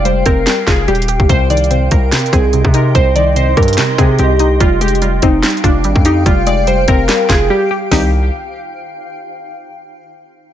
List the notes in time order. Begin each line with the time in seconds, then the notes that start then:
Already playing: F1 G#3 G4 F5 G5
0.05 G3 C5, closed hi-hat
0.26 F1 C4 A#4, kick, closed hi-hat
0.47 G3, snare, clap, closed hi-hat
0.67 F1 F4 G#4, kick, snare, clap, closed hi-hat
0.88 D#1 G3 G4, closed hi-hat
0.95 closed hi-hat
1.02 closed hi-hat
1.08 G4, closed hi-hat
1.20 F1, kick
1.29 C2 C3 C5 D#5 C6, kick, closed hi-hat
1.50 D#3 D5, closed hi-hat
1.57 closed hi-hat
1.64 closed hi-hat
1.71 C3 C5, closed hi-hat
1.91 C2 A#4, kick, closed hi-hat
2.12 C3, snare, clap, closed hi-hat
2.19 closed hi-hat
2.26 closed hi-hat
2.33 C2 C4 G#4, kick, closed hi-hat
2.53 C3, closed hi-hat
2.65 C3, kick
2.74 D#4 A#4, closed hi-hat
2.95 C2 C3 C5, kick, closed hi-hat
3.16 D#3 D5, closed hi-hat
3.36 C3 C5, closed hi-hat
3.57 G2 G3 A#4, kick, closed hi-hat
3.63 closed hi-hat
3.68 closed hi-hat
3.73 closed hi-hat
3.78 C3, snare, clap, closed hi-hat
3.98 C3 C4 G#4, kick, closed hi-hat
4.19 C2 C3 G4, closed hi-hat
4.39 D#4, closed hi-hat
4.60 F1 G3 F4 F5 G5, kick, closed hi-hat
4.81 G#3 G4, closed hi-hat
4.88 closed hi-hat
4.95 closed hi-hat
5.02 G3 F4, closed hi-hat
5.22 F1 C4 D#4, kick, closed hi-hat
5.43 G3, snare, clap, closed hi-hat
5.50 closed hi-hat
5.57 closed hi-hat
5.64 F1 D4 F4, kick, closed hi-hat
5.84 G#1 G3, closed hi-hat
5.96 F2, kick
6.05 D#4 G4, closed hi-hat
6.26 F1 G3 F4, kick, closed hi-hat
6.47 G#3 D5, closed hi-hat
6.67 G3 C5, closed hi-hat
6.88 F1 C4 A#4, kick, closed hi-hat
7.09 G3, snare, clap, closed hi-hat
7.29 F1 F4 G#4, kick, snare, clap, closed hi-hat
7.50 G3 G4
7.71 G4
7.91 C2 D#3 G3 C4 D#4 G4, snare, floor tom, open hi-hat